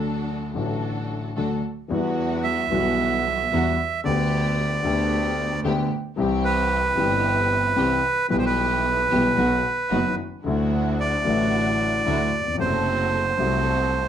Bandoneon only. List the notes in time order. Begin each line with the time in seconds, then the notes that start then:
2.43 E5
4.05 D5
6.45 B4
8.30 B4
8.39 C5
8.46 B4
11.00 D5
12.60 C5